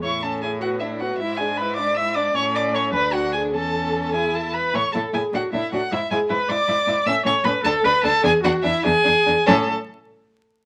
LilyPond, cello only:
\new Staff \with { instrumentName = "Cello" } { \clef bass \time 6/8 \key a \major \tempo 4. = 102 a,2. | gis,2. | a,4. d,4. | e,2~ e,8 r8 |
a,8 a,8 a,8 a,8 a,8 a,8 | gis,8 gis,8 gis,8 gis,8 gis,8 gis,8 | a,8 a,8 a,8 d,8 d,8 d,8 | e,8 e,8 e,8 e,8 e,8 e,8 |
a,8 r2 r8 | }